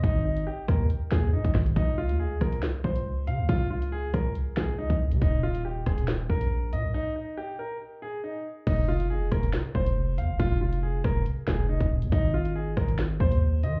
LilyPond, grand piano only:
\new Staff \with { instrumentName = "Grand piano" } { \time 4/4 \key f \minor \tempo 4 = 139 ees'8 ees'8 g'8 bes'8 r8 aes'8 ees'8 r8 | ees'8 f'8 aes'8 bes'8 r8 c''4 f''8 | f'8 f'8 aes'8 bes'8 r8 aes'8 ees'8 r8 | ees'8 f'8 g'8 aes'8 r8 bes'4 ees''8 |
ees'8 ees'8 g'8 bes'8 r8 aes'8 ees'8 r8 | ees'8 f'8 aes'8 bes'8 r8 c''4 f''8 | f'8 f'8 aes'8 bes'8 r8 aes'8 ees'8 r8 | ees'8 f'8 aes'8 bes'8 r8 c''4 ees''8 | }